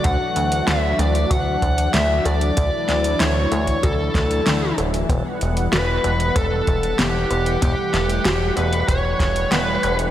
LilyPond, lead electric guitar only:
\new Staff \with { instrumentName = "Lead electric guitar" } { \time 4/4 \key d \major \tempo 4 = 95 fis''4 e''8 d''8 fis''4 e''8 d''8~ | d''4 cis''8 cis''8 a'4. r8 | r4 b'4 a'4 g'4 | g'4. b'8 cis''4 b'8. r16 | }